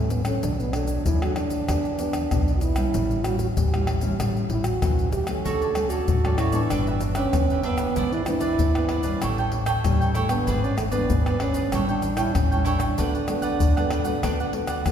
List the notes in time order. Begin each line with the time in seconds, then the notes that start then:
Already playing: A1 E3 G3 A3 C#4 E4
0.10 B3, pandeiro, shaker
0.25 F#3 A3 C#4 D4, pandeiro, tamborim, shaker, surdo
0.43 B1 B2 D4, pandeiro, shaker, surdo
0.60 B3, pandeiro, shaker
0.73 F#3 A3 D4, pandeiro, tamborim
0.87 pandeiro, shaker, surdo
1.06 D#2 F#2 E4, pandeiro, shaker, surdo
1.22 F#3 A3 D4 F#4, pandeiro, tamborim, shaker
1.36 D4, pandeiro, tamborim
1.50 pandeiro, shaker, surdo
1.69 E2 E3 B3 D4 G4, pandeiro, tamborim, shaker, surdo
1.85 pandeiro, shaker
1.99 B3 D4 G4, pandeiro, shaker
2.13 pandeiro, tamborim, shaker, surdo
2.31 B1 B2 B3 D4 G4, pandeiro, tamborim, shaker, surdo
2.48 pandeiro, shaker
2.56 F#4
2.61 E4, pandeiro, shaker
2.76 G3 C#4 E4, pandeiro, tamborim, shaker, surdo
2.94 A1 A2, pandeiro, shaker, surdo
3.11 pandeiro, shaker
3.24 G3 C#4 E4 F#4, pandeiro, tamborim, shaker
3.39 F#4, pandeiro, shaker, surdo
3.57 A1 E3 G4, pandeiro, shaker, surdo
3.74 G3 C#4 E4, pandeiro, tamborim, shaker
3.87 pandeiro, tamborim
4.01 G3 C#4 E4, pandeiro, shaker, surdo
4.20 A1 A2 G3 C#4 E4, pandeiro, tamborim, shaker, surdo
4.36 pandeiro, shaker
4.50 A1 E4, pandeiro
4.64 F#4, pandeiro, tamborim, shaker, surdo
4.82 B1 E3 G3 C#4 E4, pandeiro, tamborim, shaker, surdo
4.99 pandeiro, shaker
5.12 C#2 G4, pandeiro, shaker
5.27 F#3 A3 C#4, pandeiro, tamborim, shaker, surdo
5.45 D2 D3 F#4 A4 C#5 D5, pandeiro, shaker, surdo
5.62 A4 C#5 D5, pandeiro, shaker
5.75 F#3 A3 C#4, muted cavaquinho stroke, pandeiro, tamborim, shaker
5.89 F#4 A4 C#5 D5, pandeiro, shaker, surdo
6.08 A1 A2, pandeiro, shaker, surdo
6.24 F#3 A3 C#4 A4 C#5 D5, pandeiro, tamborim, shaker
6.38 E4 F#4 A4 C#5 D5, pandeiro, tamborim, shaker
6.52 E3 B3 D4 A4 C#5 D5, pandeiro, shaker, surdo
6.64 E4
6.70 G1 G2 D4 G4 B4 E5, pandeiro, tamborim, shaker, surdo
6.87 G4 B4 E5, pandeiro, shaker
7.00 muted cavaquinho stroke, pandeiro, shaker
7.15 C#4 G4 B4 E5, pandeiro, tamborim, shaker, surdo
7.33 F#1 D3 E3 B3 D4, pandeiro, tamborim, shaker, surdo
7.50 G4 B4 E5, pandeiro, shaker
7.63 B3 D4 G4 B4 E5, pandeiro
7.78 E3 B3 D4 G4 B4 E5, pandeiro, tamborim, shaker, surdo
7.96 G#1 G#2 E4 G#4 B4 D5, pandeiro, shaker, surdo
8.12 E4 G#4 B4 D5, pandeiro, shaker
8.26 E3 B3 D4 E4, muted cavaquinho stroke, pandeiro, tamborim, shaker
8.40 G#4 B4 D5, pandeiro, shaker, surdo
8.59 G#1 G#2, pandeiro, shaker, surdo
8.75 E3 B3 D4 G#4 B4 D5, pandeiro, tamborim, shaker
8.89 E4 G#4 B4 D5, pandeiro, tamborim
9.03 G3 C#4 E4 G#4 B4 D5, pandeiro, shaker, surdo
9.22 A1 A2 E4 A4 C#5 G5, pandeiro, tamborim, shaker, surdo
9.38 A4 C#5 G5, pandeiro, shaker
9.52 muted cavaquinho stroke, pandeiro
9.66 A4 C#5 G5, pandeiro, tamborim, shaker, surdo
9.84 A1 E3 G3 C#4 E4, pandeiro, tamborim, shaker, surdo
10.00 A4 C#5 G5, pandeiro, shaker
10.14 A3 E4 A4 C#5 G5, pandeiro, shaker
10.29 E3 B3 D4 A4 C#5 G5, pandeiro, tamborim, shaker, surdo
10.47 G#1 G#2 E4 G#4 B4 D5, pandeiro, shaker, surdo
10.64 C#4 G#4 B4 D5, pandeiro, shaker
10.77 A3, muted cavaquinho stroke, pandeiro, tamborim, shaker
10.91 E3 B3 D4 G#4 B4 D5, pandeiro, shaker, surdo
11.10 G#1 G#2, pandeiro, shaker, surdo
11.26 E3 B3 D4 G#4 B4 D5, pandeiro, tamborim, shaker
11.40 C#4 E4 G#4 B4 D5, pandeiro, tamborim
11.54 G#4 B4 D5, pandeiro, shaker, surdo
11.72 A1 A2 G3 C#4 E4 A4 C#5 G5, pandeiro, tamborim, shaker, surdo
11.89 D4 A4 C#5 G5, pandeiro, shaker
12.02 muted cavaquinho stroke, pandeiro, shaker
12.17 G3 C#4 E4 A4 C#5 G5, pandeiro, tamborim, shaker, surdo
12.35 A1 E3 C#4, pandeiro, tamborim, shaker, surdo
12.51 G3 C#4 E4 A4 C#5 G5, pandeiro, shaker
12.65 D4 E4 A4 C#5 G5, pandeiro, shaker
12.79 A4 C#5 G5, pandeiro, tamborim, shaker, surdo
12.98 D2 D3 A3 B3 D4 F#4 B4 D5 F#5, pandeiro, shaker, surdo
13.14 B4 D5 F#5, pandeiro, shaker
13.28 A3 B3 F#4, muted cavaquinho stroke, pandeiro, tamborim, shaker
13.42 B4 D5 F#5, pandeiro, shaker, surdo
13.60 D2 A2, pandeiro, shaker, surdo
13.77 A3 B3 F#4 B4 D5 F#5, pandeiro, tamborim, shaker
13.90 D4 B4 D5 F#5, pandeiro, tamborim
14.05 A3 B3 F#4 B4 D5 F#5, pandeiro, shaker, surdo
14.23 D2 D3 A3 B3 D4 F#4 B4 D5 F#5, pandeiro, tamborim, shaker, surdo
14.40 B4 D5 F#5, pandeiro, shaker
14.53 A3 B3 F#4, muted cavaquinho stroke, pandeiro, surdo
14.67 B4 D5 F#5, pandeiro, tamborim, shaker, surdo
14.86 E2 A2 A3 B3 F#4, pandeiro, tamborim, shaker, surdo